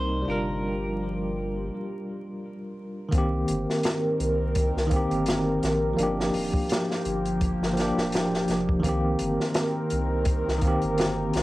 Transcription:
Already playing: sub bass C2, ambient pad C3 A#3 D#4, tine electric piano G3 C4 D#4 A#4, clean electric guitar C5
0.22 tine electric piano G3 D4
0.26 sub bass G1, ambient pad F3 G4, tine electric piano F4, clean electric guitar A#4
0.31 tine electric piano A#4
3.09 tine electric piano D#3 A#3, kick, closed hi-hat
3.13 sub bass C2, ambient pad D#3 C4 A#4, tine electric piano C4
3.18 tine electric piano G4
3.48 sub bass G1, closed hi-hat
3.70 snare
3.83 snare, closed hi-hat
4.20 sub bass C2, closed hi-hat
4.55 kick, closed hi-hat
4.76 sub bass C2, snare
4.87 tine electric piano D#3 A#3
4.91 tine electric piano C4, kick, closed hi-hat
4.96 tine electric piano G4
5.11 sub bass G1, closed hi-hat
5.26 snare, closed hi-hat
5.63 sub bass A#1, snare, closed hi-hat
5.93 tine electric piano F3 A#3, ambient pad F3 A#3 G4
5.98 sub bass G1, tine electric piano D4, closed hi-hat
6.03 tine electric piano G4
6.20 snare
6.34 sub bass D1, open hi-hat
6.54 kick
6.69 snare, closed hi-hat
6.91 snare
7.05 sub bass G1, closed hi-hat
7.25 closed hi-hat
7.41 kick, closed hi-hat
7.60 sub bass G1, snare
7.73 tine electric piano F3 A#3
7.77 tine electric piano D4, snare, closed hi-hat
7.82 tine electric piano G4
7.97 sub bass D1, snare
8.12 snare, closed hi-hat
8.34 snare
8.48 sub bass F1, snare, closed hi-hat
8.69 kick
8.80 sub bass C2, tine electric piano D#3 A#3, ambient pad D#3 C4 A#4, kick
8.84 tine electric piano C4, closed hi-hat
8.89 tine electric piano G4
9.19 sub bass G1, closed hi-hat
9.40 snare
9.54 snare, closed hi-hat
9.90 sub bass C2, closed hi-hat
10.25 kick, closed hi-hat
10.48 sub bass C2, snare
10.59 tine electric piano D#3 A#3, kick, closed hi-hat
10.65 tine electric piano C4 G4
10.82 sub bass G1, closed hi-hat
10.98 snare, closed hi-hat
11.33 sub bass A#1, snare, closed hi-hat

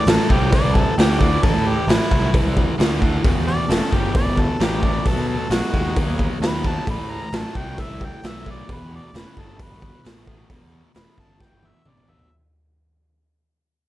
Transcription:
Already playing: harmonica D5
0.07 picked electric bass A1, overdriven electric guitar A2 F#3, harmonica A4, snare, open hi-hat
0.30 picked electric bass C2, overdriven electric guitar A2 F#3, harmonica G4, kick
0.52 overdriven electric guitar A2 E3, harmonica D5, kick, open hi-hat
0.64 picked electric bass C2
0.75 harmonica A4, kick
0.98 picked electric bass D2, overdriven electric guitar A2 E3, harmonica G4, snare, open hi-hat
1.21 overdriven electric guitar A2 E3, harmonica D5, kick
1.43 picked electric bass A1, overdriven electric guitar A2 E3, harmonica A4, kick, open hi-hat
1.54 picked electric bass A2
1.68 harmonica G4
1.87 picked electric bass A1, overdriven electric guitar A2 F#3, harmonica E4, snare, open hi-hat
2.11 picked electric bass C2, overdriven electric guitar A2 F#3, kick
2.33 overdriven electric guitar A2 E3, kick, open hi-hat
2.45 picked electric bass C2
2.57 kick
2.78 picked electric bass D2, overdriven electric guitar A2 E3, snare, open hi-hat
3.01 overdriven electric guitar A2 E3, kick
3.24 picked electric bass E1, overdriven electric guitar E2 B2, kick, open hi-hat
3.35 picked electric bass E2
3.48 harmonica D5
3.69 picked electric bass E1, overdriven electric guitar E2 C#3, harmonica A4, snare, open hi-hat
3.92 picked electric bass G1, overdriven electric guitar E2 C#3, harmonica G4, kick
4.15 overdriven electric guitar E2 B2, harmonica D5, kick, open hi-hat
4.26 picked electric bass G1
4.37 harmonica A4, kick
4.60 picked electric bass A1, overdriven electric guitar E2 B2, harmonica G4, snare, open hi-hat
4.82 overdriven electric guitar E2 B2, harmonica D5, kick
5.05 picked electric bass B1, overdriven electric guitar B2 F#3, harmonica A4, kick, open hi-hat
5.16 picked electric bass B2
5.29 harmonica A4
5.50 picked electric bass B1, overdriven electric guitar B2 G#3, harmonica F#4, snare, open hi-hat
5.73 picked electric bass D#2, overdriven electric guitar B2 G#3, kick
5.96 overdriven electric guitar B2 F#3, kick, open hi-hat
6.07 picked electric bass D#2
6.19 kick
6.40 picked electric bass D#2, overdriven electric guitar B2 F#3, harmonica B5, snare, open hi-hat
6.64 overdriven electric guitar B2 F#3, harmonica A5, kick
6.87 picked electric bass A1, overdriven electric guitar A2 E3, harmonica B5, kick, open hi-hat
6.99 picked electric bass A2
7.11 harmonica A#5
7.32 picked electric bass A1, overdriven electric guitar A2 F#3, harmonica A5, snare, open hi-hat
7.55 picked electric bass C2, overdriven electric guitar A2 F#3, harmonica G5, kick
7.78 overdriven electric guitar A2 E3, harmonica E5, kick, open hi-hat
7.90 picked electric bass C2
8.01 harmonica G5, kick
8.23 picked electric bass B1, overdriven electric guitar A2 E3, harmonica E5, snare, open hi-hat
8.46 overdriven electric guitar A2 E3, kick
8.51 harmonica D5
8.68 picked electric bass E1, overdriven electric guitar E2 B2, kick, open hi-hat
8.72 harmonica B4
8.80 picked electric bass E2
8.95 harmonica D5
9.13 picked electric bass E1, overdriven electric guitar E2 C#3, harmonica B4, snare, open hi-hat
9.36 picked electric bass G1, overdriven electric guitar E2 C#3, harmonica A4, kick
9.59 overdriven electric guitar E2 B2, harmonica B4, kick, open hi-hat
9.70 picked electric bass G1
9.82 kick
10.04 picked electric bass A1, overdriven electric guitar E2 B2, snare, open hi-hat
10.27 overdriven electric guitar E2 B2, kick
10.50 picked electric bass E1, overdriven electric guitar E2 B2, kick, open hi-hat
10.62 picked electric bass E2
10.95 picked electric bass E1, overdriven electric guitar E2 C#3, harmonica B5, snare, open hi-hat
11.17 picked electric bass G1, overdriven electric guitar E2 C#3, harmonica A5, kick
11.40 overdriven electric guitar E2 B2, harmonica G5, kick, snare
11.52 picked electric bass G1
11.63 high tom
11.67 harmonica E5
11.85 picked electric bass A1, overdriven electric guitar E2 B2, harmonica D5, mid tom
11.97 mid tom
12.07 overdriven electric guitar E2 B2, harmonica E5, floor tom
12.19 floor tom

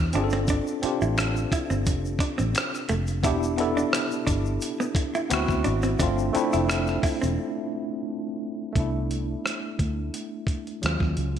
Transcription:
Already playing: fingered electric bass E2, tine electric piano B3 D4 E4 G4
0.13 fingered electric bass G1, tine electric piano C4 D4 F4 G#4, hollow-body jazz guitar D4, closed hi-hat, shaker
0.24 tine electric piano A4
0.30 hollow-body jazz guitar C4, closed hi-hat, shaker
0.47 hollow-body jazz guitar D4, kick, closed hi-hat, shaker
0.67 shaker
0.82 tine electric piano C4 D4 F4 G4, muted hollow-body jazz guitar stroke, muted fingered electric bass stroke, closed hi-hat
1.02 fingered electric bass A1, hollow-body jazz guitar E4, shaker
1.18 finger snap, muted hollow-body jazz guitar stroke, cross-stick, closed hi-hat, shaker
1.36 shaker
1.52 hollow-body jazz guitar E4, muted fingered electric bass stroke, kick, closed hi-hat, shaker
1.70 fingered electric bass G1, hollow-body jazz guitar C4, shaker
1.86 fingered electric bass F1, muted hollow-body jazz guitar stroke, kick, closed hi-hat, shaker
2.05 shaker
2.19 hollow-body jazz guitar D4, kick, closed hi-hat
2.38 fingered electric bass A1, hollow-body jazz guitar C4, closed hi-hat, shaker
2.55 finger snap, cross-stick, closed hi-hat, shaker
2.75 cross-stick, shaker
2.89 fingered electric bass F1, hollow-body jazz guitar A3, closed hi-hat, shaker
3.07 closed hi-hat, shaker
3.23 fingered electric bass E1, tine electric piano B3 D4 E4 G4, hollow-body jazz guitar E4, kick, closed hi-hat, shaker
3.43 shaker
3.57 tine electric piano B3 D4 E4 A4, muted hollow-body jazz guitar stroke, closed hi-hat
3.77 hollow-body jazz guitar D4, shaker
3.93 finger snap, cross-stick, closed hi-hat, shaker
4.11 shaker
4.27 fingered electric bass G1, hollow-body jazz guitar D4, kick, closed hi-hat, shaker
4.45 shaker
4.61 closed hi-hat, shaker
4.80 hollow-body jazz guitar B3, shaker
4.95 muted hollow-body jazz guitar stroke, kick, closed hi-hat
5.14 hollow-body jazz guitar E4, closed hi-hat, shaker
5.30 fingered electric bass D2, tine electric piano B3 C4 E4 F#4, finger snap, muted hollow-body jazz guitar stroke, cross-stick, closed hi-hat, shaker
5.49 fingered electric bass D2, kick, cross-stick, shaker
5.64 fingered electric bass G#1, hollow-body jazz guitar D4, closed hi-hat, shaker
5.82 hollow-body jazz guitar C4, closed hi-hat, shaker
5.99 fingered electric bass G1, tine electric piano A3 C4 D4 F4, hollow-body jazz guitar D4, kick, closed hi-hat, shaker
6.18 shaker
6.33 tine electric piano A3 C4 D4 E4, muted hollow-body jazz guitar stroke, muted fingered electric bass stroke, closed hi-hat, shaker
6.52 fingered electric bass F1, hollow-body jazz guitar E4, closed hi-hat, shaker
6.69 finger snap, muted hollow-body jazz guitar stroke, cross-stick, closed hi-hat, shaker
6.87 cross-stick, shaker
7.03 hollow-body jazz guitar E4, muted fingered electric bass stroke, kick, open hi-hat, shaker
7.22 fingered electric bass E1, hollow-body jazz guitar C4, closed hi-hat, shaker
8.73 fingered electric bass C2, tine electric piano A3 B3, kick, closed hi-hat
8.77 tine electric piano D4 E4
9.11 closed hi-hat
9.46 cross-stick, closed hi-hat
9.79 fingered electric bass D2, kick, closed hi-hat
10.14 closed hi-hat
10.47 kick, closed hi-hat
10.67 closed hi-hat
10.82 fingered electric bass D#2, tine electric piano F#3 G#3 C#4 F4, cross-stick, closed hi-hat
11.00 fingered electric bass D#2, kick, cross-stick
11.17 fingered electric bass C#2, closed hi-hat

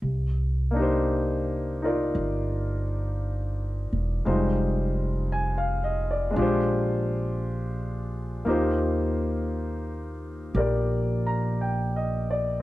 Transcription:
0.02 upright bass C2
0.71 grand piano A#3 D4
0.76 grand piano D#4 G4
0.82 grand piano C5
1.82 grand piano D#4 F4 A#4 D5
2.15 upright bass G1
3.93 upright bass E1
4.25 upright bass F1, grand piano G3 G#3 D#4 F4 C5
5.32 grand piano G#5
5.58 grand piano F5
5.84 grand piano D#5
6.11 grand piano D5
6.31 grand piano G#3 D4
6.36 upright bass A#1, grand piano F4 G4
6.42 grand piano C5
8.45 upright bass D#2, grand piano A#3 D#4 F4 G4
8.49 grand piano C5
10.55 upright bass A#1, grand piano G4 A#4 D5
11.26 grand piano A#5
11.61 grand piano G5
11.96 grand piano D#5
12.31 grand piano D5

